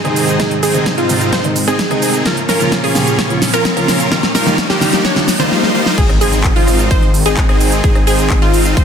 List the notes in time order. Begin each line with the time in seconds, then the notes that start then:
Already playing: G#2 D#3 C4, riser
0.04 C3 D#3 G#3 C4 D#4 G#4, closed hi-hat
0.16 open hi-hat, cabasa
0.28 closed hi-hat, cabasa
0.39 C3 D#3 G#3 C4 D#4 G#4, kick, snare, closed hi-hat, cabasa
0.51 closed hi-hat
0.63 C4 D#4 G#4, open hi-hat, cabasa
0.74 C3 D#3 G#3 D#4, closed hi-hat, cabasa
0.86 kick, snare, closed hi-hat, cabasa
0.98 C4 D#4 F4, closed hi-hat
1.09 C3 D#3 G#3 F4, open hi-hat, cabasa
1.21 closed hi-hat, cabasa
1.33 C4 D#4 C5, kick, snare, closed hi-hat, cabasa
1.44 C3 D#3 G#3 D#4, closed hi-hat
1.56 open hi-hat, cabasa
1.68 C4 D#4 G#4, closed hi-hat, cabasa
1.79 kick, snare, closed hi-hat, cabasa
1.90 C3 D#3 G#3 C4 D#4 G#4, closed hi-hat
2.02 open hi-hat, cabasa
2.14 closed hi-hat, cabasa
2.25 A#2 C#3 F3 A#3 C#4 F4 A#4, kick, snare, closed hi-hat, cabasa
2.37 closed hi-hat
2.49 C#4 F4 A#4, snare, open hi-hat, cabasa
2.60 C#3 F3 A#3 F4, closed hi-hat, cabasa
2.72 kick, snare, closed hi-hat, cabasa
2.84 C#4 F4 G#4, open hi-hat
2.95 C#3 F3 A#3 G4, snare, open hi-hat, cabasa
3.07 closed hi-hat, cabasa
3.19 C#4 F4 C#5, kick, snare, closed hi-hat, cabasa
3.30 C#3 F3 A#3 F4, closed hi-hat
3.42 snare, open hi-hat, cabasa
3.53 C#4 F4 A#4, closed hi-hat, cabasa
3.65 kick, snare, closed hi-hat, cabasa
3.76 C#3 F3 A#3 C#4 F4 A#4, closed hi-hat
3.88 snare, open hi-hat, cabasa
4.00 closed hi-hat, cabasa
4.11 D#3 G3 A#3 D#4 F4 A#4, kick, snare, closed hi-hat, cabasa
4.23 snare, closed hi-hat
4.35 G3 A#3 D#4 F4 A#4, snare, open hi-hat, cabasa
4.46 D#3 G3 A#3 F4, snare, closed hi-hat, cabasa
4.58 kick, snare, closed hi-hat, cabasa
4.70 G3 A#3 D#4 F4 G4, snare, closed hi-hat
4.81 D#3 G3 A#3 G4, snare, open hi-hat, cabasa
4.93 snare, closed hi-hat, cabasa
5.05 G3 A#3 D#4 F4 C#5, kick, snare, closed hi-hat, swell, cabasa
5.16 D#3 G3 A#3 F4, snare, closed hi-hat
5.28 snare, open hi-hat, cabasa
5.39 D#3 G3 A#3 D#4 F4 C5, snare, closed hi-hat, cabasa
5.51 snare
5.63 snare
5.75 G3 A#3 D#4 F4 C5
5.86 snare
5.98 G#1 D#3 G#3 C4 D#4 G#4, kick, closed hi-hat, crash, impact, cabasa
6.09 cross-stick, closed hi-hat
6.21 G#1 C4 D#4 G#4, open hi-hat, cabasa
6.33 closed hi-hat, cabasa
6.44 kick, clap, closed hi-hat, cabasa
6.56 G#1 C4 D#4 F4, open hi-hat
6.68 cross-stick, open hi-hat, cabasa
6.79 closed hi-hat, cabasa
6.91 G#1 C4 D#4 C5, kick, closed hi-hat, cabasa
7.03 closed hi-hat
7.14 open hi-hat, cabasa
7.26 G#1 C4 D#4 G#4, closed hi-hat, cabasa
7.37 kick, clap, closed hi-hat, cabasa
7.49 G#1 C4 D#4 G#4, cross-stick, closed hi-hat
7.60 open hi-hat, cabasa
7.72 closed hi-hat, cabasa
7.84 G#1 C4 D#4 G#4, kick, closed hi-hat, cabasa
7.95 cross-stick, closed hi-hat
8.07 G#1 C4 D#4 G#4, open hi-hat, cabasa
8.19 closed hi-hat, cabasa
8.30 kick, clap, closed hi-hat, cabasa
8.42 G#1 C4 D#4 F4, closed hi-hat
8.54 open hi-hat, cabasa
8.65 closed hi-hat, cabasa
8.77 G#1 C4 D#4 C5, kick, closed hi-hat, cabasa